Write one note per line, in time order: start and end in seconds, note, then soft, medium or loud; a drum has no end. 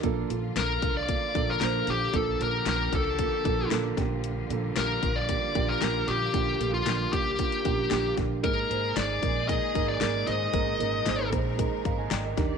0.03 0.25 A#1 medium
0.03 0.78 A#2 medium
0.03 8.40 D3 medium
0.03 8.40 F3 medium
0.03 0.27 A#3 loud
0.03 3.94 A#3 medium
0.03 0.27 D4 medium
0.03 2.12 F4 medium
0.03 0.27 F4 medium
0.03 0.27 A4 loud
0.03 kick medium
0.03 closed hi-hat medium
0.30 0.51 A#1 medium
0.30 0.53 A#3 medium
0.30 0.53 D4 medium
0.30 0.54 F4 medium
0.30 0.54 A4 medium
0.30 closed hi-hat medium
0.56 0.77 A#1 medium
0.56 0.80 A#3 medium
0.56 0.80 D4 medium
0.56 0.80 F4 medium
0.56 0.80 A4 medium
0.56 0.93 A#4 medium
0.56 snare medium
0.56 closed hi-hat medium
0.82 1.15 C2 medium
0.82 1.06 A#3 medium
0.82 1.06 D4 medium
0.82 1.06 F4 medium
0.82 1.06 A4 medium
0.82 kick medium
0.82 closed hi-hat medium
0.97 1.50 D5 medium
1.08 1.32 A#3 medium
1.08 1.32 D4 medium
1.08 1.32 F4 medium
1.08 1.32 A4 medium
1.08 kick medium
1.08 closed hi-hat medium
1.35 1.57 A#1 medium
1.35 1.58 A#3 medium
1.35 1.59 D4 medium
1.35 1.59 F4 medium
1.35 1.59 A4 medium
1.35 kick medium
1.35 closed hi-hat medium
1.50 1.89 A#4 medium
1.61 1.83 A#1 medium
1.61 1.85 A#3 medium
1.61 1.85 D4 medium
1.61 1.85 F4 medium
1.61 1.85 C5 medium
1.61 snare medium
1.61 closed hi-hat medium
1.87 2.09 A#1 medium
1.87 2.11 A#3 medium
1.87 2.11 D4 medium
1.87 2.12 F4 medium
1.87 2.16 G4 medium
1.87 2.12 A4 medium
1.87 snare soft
1.87 closed hi-hat medium
2.13 2.35 A#1 medium
2.13 2.89 A#2 medium
2.13 2.37 A#3 medium
2.13 2.38 D4 medium
2.13 2.38 F4 medium
2.13 3.95 G4 medium
2.13 2.38 A4 loud
2.13 2.42 A4 medium
2.13 kick medium
2.13 closed hi-hat medium
2.40 2.61 A#1 medium
2.40 2.64 A#3 medium
2.40 2.64 D4 medium
2.40 2.64 F4 medium
2.40 2.64 A4 medium
2.40 2.67 A#4 medium
2.40 closed hi-hat medium
2.66 2.88 A#1 medium
2.66 2.90 A#3 medium
2.66 2.90 D4 medium
2.66 2.90 F4 medium
2.66 2.90 A#4 medium
2.66 2.92 A#4 medium
2.66 snare medium
2.66 closed hi-hat medium
2.93 3.25 C2 medium
2.93 3.16 A#3 medium
2.93 3.16 D4 medium
2.93 3.17 F4 medium
2.93 3.17 A4 medium
2.93 3.68 A4 medium
2.93 kick medium
2.93 closed hi-hat medium
3.19 3.43 A#3 medium
3.19 3.43 D4 medium
3.19 3.43 F4 medium
3.19 3.43 A4 medium
3.19 kick medium
3.19 closed hi-hat medium
3.45 3.66 A#1 medium
3.45 3.69 A#3 medium
3.45 3.69 D4 medium
3.45 3.69 F4 medium
3.45 3.69 A4 medium
3.45 kick medium
3.45 closed hi-hat medium
3.71 3.93 A#1 medium
3.71 3.95 A#3 loud
3.71 3.95 D4 medium
3.71 3.95 F4 medium
3.71 3.95 A4 loud
3.71 snare loud
3.71 closed hi-hat medium
3.97 4.40 A#1 medium
3.97 4.72 A#2 medium
3.97 8.40 G3 medium
3.97 8.40 A#3 medium
3.97 4.45 A#3 medium
3.97 4.45 D4 medium
3.97 8.39 F4 medium
3.97 4.45 F4 medium
3.97 4.45 G4 medium
3.97 kick medium
3.97 snare soft
3.97 closed hi-hat medium
4.24 closed hi-hat medium
4.50 4.71 A#1 medium
4.50 4.74 A#3 medium
4.50 4.74 D4 medium
4.50 4.74 F4 medium
4.50 4.74 A4 medium
4.50 closed hi-hat medium
4.76 4.98 A#1 medium
4.76 5.00 A#3 medium
4.76 5.00 D4 medium
4.76 5.00 F4 medium
4.76 5.00 G4 medium
4.76 5.17 A#4 medium
4.76 snare medium
4.76 closed hi-hat medium
5.02 5.35 A#1 medium
5.02 5.26 A#3 medium
5.02 5.26 D4 medium
5.02 5.26 F4 medium
5.02 5.26 G4 medium
5.02 kick medium
5.02 closed hi-hat medium
5.16 5.70 D5 medium
5.29 5.52 A#3 medium
5.29 5.52 D4 medium
5.29 5.52 F4 medium
5.29 5.53 G4 medium
5.29 kick medium
5.29 closed hi-hat medium
5.55 5.77 A#1 medium
5.55 5.78 A#3 medium
5.55 5.79 D4 medium
5.55 5.79 F4 medium
5.55 5.79 G4 medium
5.55 kick medium
5.55 closed hi-hat medium
5.69 6.09 A#4 medium
5.81 6.03 A#1 medium
5.81 6.05 A#3 medium
5.81 6.05 D4 medium
5.81 6.05 F4 medium
5.81 6.05 G4 medium
5.81 snare medium
5.81 closed hi-hat medium
6.08 6.29 A#1 medium
6.08 6.83 A#2 medium
6.08 6.31 A#3 medium
6.08 6.31 D4 medium
6.08 6.31 F4 medium
6.08 6.69 G4 medium
6.08 6.32 G4 medium
6.08 snare soft
6.08 closed hi-hat medium
6.34 6.55 A#1 medium
6.34 6.57 A#3 medium
6.34 6.57 D4 medium
6.34 6.58 F4 medium
6.34 6.58 G4 medium
6.34 kick medium
6.34 closed hi-hat medium
6.59 6.81 A#1 medium
6.59 6.83 A#3 medium
6.59 6.83 D4 medium
6.59 6.84 F4 medium
6.59 6.84 A4 medium
6.59 closed hi-hat medium
6.74 7.13 F4 medium
6.86 7.08 A#1 medium
6.86 7.10 A#3 medium
6.86 7.10 D4 medium
6.86 7.10 F4 soft
6.86 7.10 G4 medium
6.86 snare medium
6.86 closed hi-hat medium
7.12 7.45 C2 medium
7.12 7.36 A#3 medium
7.12 7.36 D4 medium
7.12 7.36 F4 medium
7.12 8.14 G4 medium
7.12 7.36 G4 medium
7.12 kick medium
7.12 closed hi-hat medium
7.39 7.62 A#3 medium
7.39 7.62 D4 medium
7.39 7.63 F4 medium
7.39 7.63 G4 medium
7.39 kick medium
7.39 closed hi-hat medium
7.52 closed hi-hat soft
7.65 7.87 A#1 medium
7.65 7.88 A#3 medium
7.65 7.89 D4 medium
7.65 7.89 F4 medium
7.65 7.89 G4 medium
7.65 kick medium
7.65 closed hi-hat medium
7.91 8.13 A#1 medium
7.91 8.15 A#3 medium
7.91 8.15 D4 medium
7.91 8.15 F4 medium
7.91 8.15 G4 loud
7.91 snare medium
7.91 closed hi-hat medium
8.17 8.39 A#1 medium
8.17 8.41 A#3 medium
8.17 8.41 D4 medium
8.17 8.41 F4 medium
8.17 8.41 G4 medium
8.17 kick medium
8.17 snare soft
8.17 closed hi-hat medium
8.43 8.65 G#1 medium
8.43 9.18 G#2 medium
8.43 12.34 A#2 medium
8.43 12.58 D#3 medium
8.43 12.34 G#3 medium
8.43 8.67 A#3 medium
8.43 8.67 D#4 medium
8.43 12.33 D#4 medium
8.43 10.52 G#4 medium
8.43 8.67 G#4 medium
8.43 8.67 A#4 medium
8.43 8.98 A#4 medium
8.43 kick medium
8.43 closed hi-hat medium
8.69 8.92 G#1 medium
8.69 8.93 A#3 medium
8.69 8.93 D#4 medium
8.69 8.94 G#4 medium
8.69 8.94 C5 medium
8.69 closed hi-hat medium
8.96 9.18 G#1 medium
8.96 9.20 A#3 medium
8.96 9.20 D#4 medium
8.96 9.20 A#4 medium
8.96 9.48 D5 medium
8.96 snare medium
8.96 closed hi-hat medium
9.22 9.55 A#1 medium
9.22 9.46 A#3 medium
9.22 9.46 D#4 medium
9.22 9.46 G#4 medium
9.22 9.46 A#4 medium
9.22 kick medium
9.22 closed hi-hat medium
9.48 9.72 A#3 medium
9.48 9.72 D#4 medium
9.48 9.72 G#4 medium
9.48 9.72 A#4 medium
9.48 9.85 D#5 medium
9.48 kick medium
9.48 closed hi-hat medium
9.74 9.97 G#1 medium
9.74 9.98 A#3 medium
9.74 9.99 D#4 medium
9.74 9.99 G#4 medium
9.74 9.99 A#4 loud
9.74 kick medium
9.74 closed hi-hat medium
9.89 10.28 D5 medium
10.00 10.23 G#1 medium
10.00 10.24 A#3 medium
10.00 10.25 D#4 medium
10.00 10.25 G#4 medium
10.00 10.25 A#4 medium
10.00 snare loud
10.00 closed hi-hat medium
10.27 10.49 G#1 medium
10.27 10.51 A#3 medium
10.27 10.51 D#4 medium
10.27 10.51 G#4 medium
10.27 10.51 C5 medium
10.27 11.29 D#5 medium
10.27 snare soft
10.27 closed hi-hat medium
10.53 10.75 G#1 medium
10.53 11.29 G#2 medium
10.53 10.77 A#3 medium
10.53 10.77 D#4 medium
10.53 10.78 G#4 medium
10.53 12.36 A#4 medium
10.53 10.77 A#4 loud
10.53 kick loud
10.53 closed hi-hat medium
10.79 11.01 G#1 medium
10.79 11.03 A#3 medium
10.79 11.03 D#4 medium
10.79 11.04 G#4 medium
10.79 11.04 A#4 medium
10.79 closed hi-hat medium
11.05 11.33 G#1 medium
11.05 11.30 A#3 medium
11.05 11.30 D#4 medium
11.05 11.30 G#4 medium
11.05 11.30 C5 medium
11.05 snare medium
11.05 closed hi-hat medium
11.32 11.65 A#1 medium
11.32 11.56 A#3 medium
11.32 11.56 D#4 medium
11.32 11.56 G#4 medium
11.32 11.56 C5 medium
11.32 kick medium
11.32 closed hi-hat medium
11.58 11.82 A#3 medium
11.58 11.82 D#4 medium
11.58 11.82 G#4 medium
11.58 11.82 A#4 medium
11.58 kick medium
11.58 closed hi-hat medium
11.84 12.07 G#1 medium
11.84 11.98 F5 soft
11.84 11.97 A#5 medium
11.84 kick medium
11.84 closed hi-hat medium
11.98 12.11 D#5 soft
11.98 12.11 G#5 medium
12.11 12.33 G#1 medium
12.11 12.24 D5 medium
12.11 12.24 G5 medium
12.11 snare loud
12.11 closed hi-hat loud
12.25 12.37 A#4 medium
12.25 12.50 D#5 medium
12.37 12.58 D#2 medium
12.37 12.58 D#3 medium
12.37 12.58 G3 medium
12.37 12.58 A#3 medium
12.37 12.58 D4 medium
12.37 12.58 D#4 medium
12.37 12.58 G4 medium
12.37 12.58 A#4 medium
12.37 12.58 D5 medium
12.37 kick medium
12.37 snare soft
12.37 closed hi-hat medium